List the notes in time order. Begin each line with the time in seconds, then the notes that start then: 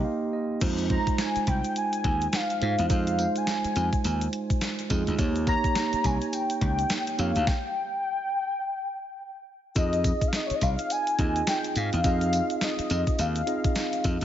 Already playing: A#3 D#4 G4 C5 D#5 G5 A#5 C6
0.04 F5
0.33 D#5
0.61 F2 G#3 D#4 F4 C5, kick, closed hi-hat, crash, shaker
0.78 closed hi-hat, shaker
0.90 G#3 D#4 F4 C5 A#5, kick, closed hi-hat
1.07 kick, closed hi-hat, shaker
1.18 G#5, snare, closed hi-hat, shaker
1.36 muted slap bass stroke, closed hi-hat, shaker
1.47 C2 G5, kick, closed hi-hat, shaker
1.64 closed hi-hat, shaker
1.76 G#5, closed hi-hat, shaker
1.93 closed hi-hat, shaker
2.04 D#2, kick, closed hi-hat
2.21 closed hi-hat, shaker
2.33 F5, snare, closed hi-hat, shaker
2.50 closed hi-hat, shaker
2.61 G#2 G#3 D#4 F4 C5, closed hi-hat
2.78 E2, closed hi-hat, shaker
2.90 F2 G#3 D#4 F4 C5 F5, kick, closed hi-hat, tambourine, shaker
3.07 closed hi-hat, shaker
3.18 G#3 D#4 F4 C5, closed hi-hat, tambourine
3.36 G#5, closed hi-hat, shaker
3.47 snare, closed hi-hat, tambourine, shaker
3.65 muted slap bass stroke, closed hi-hat, shaker
3.76 F2, closed hi-hat, tambourine, shaker
3.93 kick, closed hi-hat, shaker
4.04 D#2, closed hi-hat, tambourine, shaker
4.21 closed hi-hat, shaker
4.33 closed hi-hat
4.50 kick, closed hi-hat, shaker
4.61 snare, closed hi-hat, tambourine, shaker
4.79 closed hi-hat, shaker
4.89 F2 G#3 D#4 F4 G#4, kick, closed hi-hat, tambourine
5.07 D2, closed hi-hat, shaker
5.18 D#2 A#3 D#4 G4 C#5, kick, closed hi-hat, tambourine, shaker
5.36 closed hi-hat, shaker
5.47 A#3 D#4 G4 C#5 A#5, kick, closed hi-hat, tambourine
5.64 kick, closed hi-hat, shaker
5.75 snare, closed hi-hat, tambourine, shaker
5.93 muted slap bass stroke, closed hi-hat, shaker
6.04 C2 G#5, kick, closed hi-hat, tambourine, shaker
6.21 closed hi-hat, shaker
6.33 G5, closed hi-hat, tambourine, shaker
6.50 closed hi-hat, shaker
6.61 C#2, kick, closed hi-hat
6.79 closed hi-hat, shaker
6.90 snare, closed hi-hat, tambourine, shaker
7.07 closed hi-hat, shaker
7.18 F2 A#3 D#4 G4 C#5 F5, closed hi-hat, tambourine
7.35 D2, closed hi-hat, shaker
7.47 G5, kick, snare
9.75 F2 C4 D#4 F4 G#4 D#5, kick, closed hi-hat, tambourine, shaker
9.93 closed hi-hat, shaker
10.04 kick, closed hi-hat, tambourine, shaker
10.21 kick, closed hi-hat, shaker
10.28 F5
10.33 D#5, snare, closed hi-hat, tambourine, shaker
10.46 C#5, closed hi-hat, shaker
10.51 muted slap bass stroke
10.55 D#5
10.61 C2 F5, kick, closed hi-hat, tambourine, shaker
10.79 closed hi-hat, shaker
10.90 G#5, closed hi-hat, tambourine, shaker
11.07 closed hi-hat, shaker
11.18 D#2 C4 D#4 F4 G#4 D#5, kick, closed hi-hat, shaker
11.36 closed hi-hat, shaker
11.47 G5, snare, closed hi-hat, tambourine, shaker
11.64 closed hi-hat, shaker
11.71 G5
11.75 G#2 F5, closed hi-hat, tambourine, shaker
11.93 E2, closed hi-hat, shaker
12.04 F2 C4 D#4 F4 G#4 D#5 F5, kick, closed hi-hat, tambourine, shaker
12.21 closed hi-hat, shaker
12.33 closed hi-hat, tambourine, shaker
12.50 closed hi-hat, shaker
12.61 D#5, snare, closed hi-hat, tambourine, shaker
12.79 muted slap bass stroke, closed hi-hat, shaker
12.90 F2, closed hi-hat, tambourine, shaker
13.07 kick, closed hi-hat, shaker
13.19 D#2 F5, closed hi-hat, tambourine, shaker
13.36 closed hi-hat, shaker
13.46 C4 D#4 F4 G#4 D#5, closed hi-hat, shaker
13.64 kick, closed hi-hat, shaker
13.76 snare, closed hi-hat, tambourine, shaker
13.93 closed hi-hat, shaker
14.04 F2, kick, closed hi-hat, tambourine, shaker
14.21 closed hi-hat, shaker